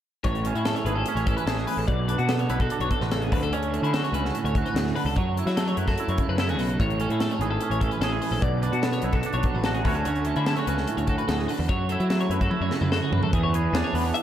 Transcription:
0.24 A1 A2 C#5, kick, closed hi-hat
0.35 closed hi-hat
0.45 C#4 A4, closed hi-hat
0.55 A2 E4, closed hi-hat
0.65 A3 A4, snare, closed hi-hat
0.75 C#5, closed hi-hat
0.85 G#1 G#4 B4, closed hi-hat
0.96 A4
1.06 C#4, closed hi-hat
1.15 A1 C#5, closed hi-hat
1.27 E3 A4, kick, closed hi-hat
1.37 B4, closed hi-hat
1.46 A1 G#4 A4, snare, closed hi-hat
1.58 G#4, snare
1.67 B4, open hi-hat
1.77 A1 A4
1.88 B1 B2 D5, kick, closed hi-hat
2.08 D4 B4, closed hi-hat
2.18 B2 F#4, closed hi-hat
2.29 B3 A4, snare, closed hi-hat
2.39 C#5, closed hi-hat
2.50 B1 E4 B4, closed hi-hat
2.60 F#4 A4, kick, closed hi-hat
2.70 D4, closed hi-hat
2.80 B1 C#5, closed hi-hat
2.91 B2 A4, kick, closed hi-hat
3.01 A1 B4, snare
3.11 C#3 A4, snare, closed hi-hat
3.22 G#4, closed hi-hat
3.31 D2 D3 B4, kick, open hi-hat
3.43 A4, closed hi-hat
3.51 D2 C#4 C#5, closed hi-hat
3.63 closed hi-hat
3.74 A3 A4, closed hi-hat
3.82 D3 E4, closed hi-hat
3.93 F#4 A4, snare, closed hi-hat
4.04 C#5, closed hi-hat
4.12 C#2 C#4 B4, closed hi-hat
4.25 A4, snare
4.35 A2, closed hi-hat
4.44 D2 C#5, closed hi-hat
4.55 F#4 A4, kick, closed hi-hat
4.66 B4, closed hi-hat
4.74 D2 A4, snare, closed hi-hat
4.85 G#4, snare
4.96 D3 B4, open hi-hat
5.05 C#2 A4
5.16 F#2 F#3 C#5, kick, closed hi-hat
5.37 E4 A4, closed hi-hat
5.46 F#3 E4, snare, closed hi-hat
5.57 A3 A4, snare, closed hi-hat
5.67 C#5, closed hi-hat
5.77 F#2 E4 B4, closed hi-hat
5.87 F#4 A4, kick, snare, closed hi-hat
5.98 E4, closed hi-hat
6.08 F#2 C#5, closed hi-hat
6.18 C#3 A4, kick, closed hi-hat
6.29 F#2 B4
6.38 E4 A4, snare, closed hi-hat
6.49 F#4 G#4, closed hi-hat
6.58 B1 B4, open hi-hat
6.69 A4, closed hi-hat
6.80 A1 A2 C#5, kick, closed hi-hat
6.90 closed hi-hat
7.00 C#4 A4, closed hi-hat
7.09 A2 E4, closed hi-hat
7.20 A3 A4, snare, closed hi-hat
7.31 C#5, closed hi-hat
7.39 G#1 G#4 B4, closed hi-hat
7.51 A4
7.61 C#4, closed hi-hat
7.70 A1 C#5, closed hi-hat
7.81 E3 A4, kick, closed hi-hat
7.91 B4, closed hi-hat
8.01 A1 G#4 A4, snare, closed hi-hat
8.12 G#4
8.22 B4, open hi-hat
8.31 A#1 A4
8.42 B1 B2 D5, kick, closed hi-hat
8.62 D4 B4, closed hi-hat
8.72 B2 F#4, closed hi-hat
8.82 B3 A4, snare, closed hi-hat
8.92 C#5, closed hi-hat
9.02 B1 E4 B4, closed hi-hat
9.13 F#4 A4, kick, closed hi-hat
9.23 D4, closed hi-hat
9.33 B1 C#5, closed hi-hat
9.43 F#3 A4, kick, closed hi-hat
9.54 A1 B4
9.64 F#4 A4, snare, closed hi-hat
9.74 G#4, closed hi-hat
9.85 D2 D3 A3 C#4 F#4 B4 C#5, kick, open hi-hat
9.95 A4, closed hi-hat
10.05 D2 C#4 C#5, closed hi-hat
10.16 closed hi-hat
10.25 A3 A4, closed hi-hat
10.36 D3 E4, closed hi-hat
10.46 E4 A4, snare, closed hi-hat
10.56 F#4 C#5, closed hi-hat
10.67 C#2 C#4 B4, closed hi-hat
10.77 A4, snare
10.88 A2, closed hi-hat
10.97 D2 C#5, closed hi-hat
11.07 F#4 A4, kick, closed hi-hat
11.18 B4, closed hi-hat
11.28 D2 A4, snare, closed hi-hat
11.38 G#4, snare
11.48 D3 B4, open hi-hat
11.58 E2 A4
11.69 F#2 F#3 C#5, kick, closed hi-hat
11.89 E4 A4, closed hi-hat
12.00 F#3 E4, closed hi-hat
12.10 A3 A4, snare, closed hi-hat
12.20 C#5, closed hi-hat
12.30 F#2 E4 B4, closed hi-hat
12.41 F#4 A4, kick, closed hi-hat
12.51 E4, high tom
12.61 F#2 C#5
12.71 C#3 A4, snare
12.81 F#2 B4, mid tom
12.92 F#4 A4, snare
13.02 G#4
13.12 F#2 B4, floor tom
13.23 A4, floor tom
13.33 E2 E3 G#4, kick, closed hi-hat
13.43 C#5
13.54 G#4 B4, closed hi-hat
13.73 E2 D4 G#4, snare, closed hi-hat
13.84 C#5
13.93 E2 B3 B4, open hi-hat
14.04 C#5
14.14 E5, closed hi-hat

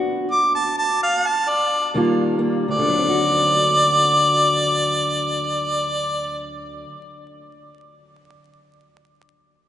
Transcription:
Already playing: D2 F#4
0.32 D6
0.55 A5
0.78 A5
1.03 F5
1.27 A5
1.50 D5
1.94 D#2 D#3 G3 A#3 F4
2.39 A#3
2.68 D2 D5
2.79 D3
2.88 F#3
2.98 C4
3.08 F#4

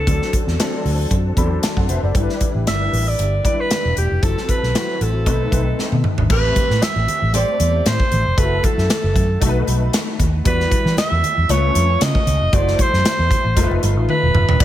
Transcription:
Already playing: A4
0.06 D2 F#3 C4 D4 A4, kick, closed hi-hat
0.22 snare
0.33 kick, closed hi-hat
0.47 E2, snare
0.58 F#3 C4 D4 A4, snare, closed hi-hat
0.85 D2, open hi-hat
1.11 F#2, kick, closed hi-hat
1.36 E2 F#3 C4 D4 A4 B5, kick, closed hi-hat
1.63 A5, snare, closed hi-hat
1.77 F#2 C5 F#5, kick
1.89 F1 B4 C5 E5, closed hi-hat
2.03 F#1 A4 D5
2.15 G3 D4 E4 A4, kick, closed hi-hat
2.22 B4
2.30 snare
2.41 kick, closed hi-hat
2.55 A1
2.66 G1 G3 D4 E4 A#4 E5, snare, closed hi-hat
2.74 B4
2.93 A1, open hi-hat
3.08 D5
3.19 G1, closed hi-hat
3.44 G3 D4 E4 B4 D5, kick, closed hi-hat
3.60 B4
3.71 snare, closed hi-hat
3.85 E1
3.97 E1 G4, closed hi-hat
4.11 F1
4.22 F#1 F#3 C4 E4 A4, kick, closed hi-hat
4.38 snare
4.49 B4, kick, closed hi-hat
4.63 B1, snare
4.74 F#3 C4 E4 F#4, snare, closed hi-hat
5.01 A1 A4, closed hi-hat
5.26 B1 A3 C4 D#4 B4, kick, closed hi-hat
5.51 B1 A3 C4 D#4 B4, kick, closed hi-hat
5.79 snare
5.92 B2, high tom
6.04 mid tom
6.18 G#1, floor tom
6.29 A1 A3 C4 G4 B4, kick, crash, muted conga
6.56 kick, closed hi-hat, high conga
6.70 A2, snare
6.82 E5, snare, closed hi-hat, muted conga, high conga
6.96 A1, muted conga
7.08 closed hi-hat, low conga
7.22 A1
7.33 A3 C4 G4 C5 D5, closed hi-hat, high conga
7.48 muted conga
7.60 E2, closed hi-hat, high conga
7.86 A2 C5, snare, closed hi-hat
8.00 kick, muted conga
8.12 A1, closed hi-hat, low conga
8.26 F1
8.37 F#1 A3 E4 F#4 A4 B4, kick, closed hi-hat
8.63 A4, kick, closed hi-hat, high conga
8.78 F#2, snare
8.89 snare, closed hi-hat, high conga
9.03 F#1
9.16 F#2, kick, closed hi-hat, low conga
9.40 B1 A3 D#4 F#4 A4, kick, closed hi-hat, muted conga, high conga
9.48 B4
9.56 muted conga
9.67 B1, closed hi-hat, high conga
9.93 snare, closed hi-hat, muted conga
10.19 D#2, kick, closed hi-hat, low conga
10.44 E2 G3 E4 F#4 B4 D5, kick, closed hi-hat
10.60 snare
10.71 kick, closed hi-hat, high conga
10.85 E3, snare
10.97 E5, snare, closed hi-hat, muted conga, high conga
11.11 E2
11.24 closed hi-hat, low conga
11.37 E2
11.49 C#2 A3 C#4 F4 B4 C#5, closed hi-hat, high conga
11.75 F2, closed hi-hat, high conga
12.01 C#3 D#5, snare, closed hi-hat
12.15 kick, muted conga
12.27 C#2, closed hi-hat, low conga
12.41 F1
12.52 F#1 A3 E4 F#4 C5 D5, kick, closed hi-hat, muted conga
12.68 snare
12.78 C5, kick, closed hi-hat, high conga
12.93 F#2, snare
13.05 snare, closed hi-hat, muted conga, high conga
13.19 E2
13.31 kick, closed hi-hat, low conga
13.45 A1
13.56 F1 A3 D#4 F4 A#4, kick, closed hi-hat, high conga
13.63 B4
13.71 F1, muted conga
13.83 G1, closed hi-hat, high conga
13.97 A1
14.09 B4, high tom
14.23 E1
14.34 F1, mid tom, low conga
14.48 D#1, floor tom
14.59 E1 F#3 E4 F#4 B4 D5, kick, crash, muted conga

